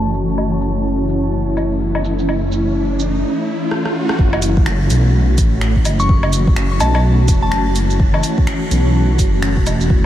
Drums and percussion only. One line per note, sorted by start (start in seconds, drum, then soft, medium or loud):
0.14 shaker medium
0.29 shaker soft
0.38 low woodblock soft
0.62 shaker medium
1.09 shaker medium
1.57 low woodblock soft
1.57 shaker medium
1.95 low woodblock medium
2.05 shaker medium
2.19 shaker soft
2.29 low woodblock soft
2.52 shaker medium
3.00 shaker soft
3.71 cross-stick medium
3.85 cross-stick medium
4.09 cross-stick medium
4.19 kick loud
4.33 low woodblock medium
4.42 open hi-hat medium
4.42 shaker medium
4.57 kick loud
4.66 finger snap loud
4.90 open hi-hat medium
4.90 shaker medium
5.38 kick loud
5.38 open hi-hat medium
5.38 shaker medium
5.61 finger snap loud
5.76 kick medium
5.85 open hi-hat medium
5.85 low woodblock soft
5.85 shaker medium
6.00 shaker soft
6.09 kick loud
6.23 low woodblock medium
6.33 open hi-hat medium
6.33 shaker medium
6.47 kick loud
6.56 finger snap loud
6.80 open hi-hat medium
6.80 low woodblock medium
6.80 shaker medium
6.95 low woodblock medium
7.28 kick loud
7.28 open hi-hat medium
7.28 shaker medium
7.52 finger snap loud
7.76 open hi-hat medium
7.76 shaker medium
7.90 shaker soft
8.00 kick loud
8.14 low woodblock medium
8.23 open hi-hat medium
8.23 shaker medium
8.38 kick loud
8.47 finger snap loud
8.71 open hi-hat medium
8.71 shaker medium
9.19 kick loud
9.19 open hi-hat medium
9.19 shaker medium
9.42 finger snap loud
9.57 kick medium
9.67 open hi-hat medium
9.67 low woodblock soft
9.67 shaker medium
9.81 shaker soft
9.90 kick loud